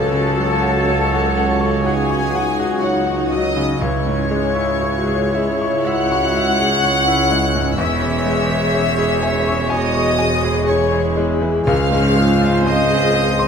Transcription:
0.00 3.64 C#2 medium
0.00 3.76 C#2 medium
0.00 3.77 C#2 medium
0.00 3.64 F#3 medium
0.00 0.86 F#4 medium
0.00 3.64 F#4 medium
0.00 0.86 A4 medium
0.00 1.81 A4 medium
0.00 1.85 A4 loud
0.00 3.50 C#5 medium
0.00 1.80 A5 medium
0.12 0.52 C#3 medium
0.38 0.78 F#3 medium
0.62 1.02 F#4 medium
0.88 1.85 C#4 medium
0.88 1.83 A4 medium
0.88 1.27 C#5 medium
1.14 1.52 F#4 medium
1.37 1.76 F#5 medium
1.61 1.99 C#6 medium
1.84 3.77 D#4 medium
1.84 2.81 F#4 medium
1.84 2.79 G#4 medium
1.84 2.80 G#4 medium
1.84 2.24 F#5 medium
1.84 2.82 G#5 loud
2.11 2.49 C#6 medium
2.35 2.73 F#5 medium
2.59 2.97 F#4 medium
2.81 3.31 F#4 medium
2.81 3.79 F#4 medium
2.81 3.31 F#4 medium
2.81 3.22 C#5 medium
2.81 3.31 F#5 medium
3.06 3.46 F#4 medium
3.30 3.71 F#3 medium
3.30 3.81 D#5 loud
3.30 3.81 D#5 medium
3.30 3.79 D#6 loud
3.56 3.81 C#3 medium
3.80 7.73 C#2 medium
3.80 7.79 C#2 medium
3.80 7.73 C#2 medium
3.80 7.74 C#2 medium
3.80 7.73 G#3 medium
3.80 4.80 C#4 medium
3.80 4.30 E4 medium
3.80 7.73 E4 medium
3.80 5.85 C#5 medium
3.80 7.73 C#5 medium
3.80 5.85 C#6 medium
4.06 4.45 G#2 medium
4.29 4.70 G#3 medium
4.29 5.81 G#4 medium
4.56 4.95 E4 medium
4.79 5.32 F#4 medium
4.79 5.22 C#5 medium
5.08 5.49 G#4 medium
5.32 6.81 E4 medium
5.32 5.76 E5 medium
5.62 6.02 C#6 medium
5.84 6.82 F#4 medium
5.84 6.26 E5 medium
5.84 7.50 F#5 loud
5.84 7.77 F#5 loud
5.84 7.77 F#6 loud
6.12 6.50 C#6 medium
6.37 6.74 E5 medium
6.60 6.97 G#4 medium
6.82 8.74 C#4 medium
6.82 7.75 E4 medium
6.82 7.21 C#5 medium
7.08 7.44 E4 medium
7.31 7.68 G#3 medium
7.56 7.78 G#2 medium
7.76 11.67 E1 medium
7.76 11.50 E1 medium
7.76 11.67 E2 medium
7.76 11.64 E2 medium
7.76 13.48 G#3 medium
7.76 8.25 E4 medium
7.76 13.48 G#4 medium
7.76 11.37 C#5 medium
7.76 9.68 E5 loud
7.76 9.68 E5 medium
7.76 9.71 E6 loud
8.02 8.41 E3 medium
8.26 8.65 G#3 medium
8.26 9.69 G#4 medium
8.51 8.90 G#4 medium
8.75 9.70 C#4 medium
8.75 9.14 C#5 medium
8.99 9.38 G#4 medium
9.23 9.62 G#5 medium
9.47 9.86 C#6 medium
9.70 10.68 F#4 medium
9.70 10.66 G#4 medium
9.70 10.68 D#5 medium
9.70 10.09 G#5 medium
9.70 10.66 D#6 loud
9.95 10.34 C#6 medium
10.19 10.58 G#5 medium
10.45 10.83 G#4 medium
10.67 11.67 E4 medium
10.67 11.65 G#4 medium
10.67 11.17 C#5 medium
10.67 11.07 C#5 medium
10.67 11.17 C#5 medium
10.67 11.16 C#6 medium
10.92 11.32 G#4 medium
11.17 11.57 G#3 medium
11.41 11.67 E3 medium
11.66 13.48 C#2 medium
11.66 13.48 C#2 loud
11.66 13.48 C#2 medium
11.66 12.61 C#4 medium
11.66 12.13 G#4 loud
11.66 13.48 C5 medium
11.66 12.62 F5 loud
11.66 12.61 F6 loud
11.92 12.31 G#2 medium
12.15 12.55 G#3 medium
12.15 12.65 F4 medium
12.42 12.81 F4 medium
12.64 13.48 C4 medium
12.64 13.48 G#4 medium
12.64 13.05 C5 medium
12.64 13.48 D#5 medium
12.64 13.48 D#5 loud
12.64 13.48 D#6 loud
12.91 13.30 G#4 medium
13.15 13.48 F5 medium
13.39 13.48 C6 medium

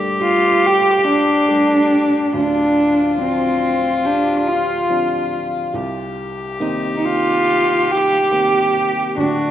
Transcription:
0.00 2.30 G1 soft
0.00 2.30 G2 medium
0.00 0.59 G3 soft
0.00 0.59 A3 soft
0.00 0.60 D4 medium
0.00 2.35 G4 loud
0.00 0.59 A4 medium
0.20 0.68 F4 loud
0.20 1.89 G4 medium
0.47 2.13 C5 soft
0.66 1.07 G4 loud
1.08 2.32 D4 loud
1.48 2.32 G3 soft
1.48 2.32 A3 soft
1.48 2.32 D4 soft
2.33 5.72 D1 medium
2.33 5.72 D2 medium
2.33 3.17 D4 loud
2.33 5.77 F4 loud
3.18 4.02 F3 soft
3.18 4.02 C4 soft
3.18 4.07 C4 medium
3.18 4.02 D4 medium
4.05 4.50 D4 medium
4.05 5.73 G4 medium
4.49 5.34 F4 medium
4.89 5.73 F3 soft
4.89 5.73 C4 soft
4.89 5.73 D4 medium
5.74 9.12 C2 medium
5.74 9.18 G4 loud
6.60 7.43 D#3 medium
6.60 7.43 A#3 soft
6.60 7.44 C4 medium
6.60 8.29 D#4 medium
6.97 7.07 D#4 medium
7.06 7.92 F4 loud
7.91 9.18 G4 loud
8.31 9.14 D#3 soft
8.31 9.15 A#3 soft
8.31 9.15 C4 soft
9.17 9.51 D1 medium
9.17 9.51 D2 medium
9.17 9.51 D4 medium
9.17 9.51 F#4 loud

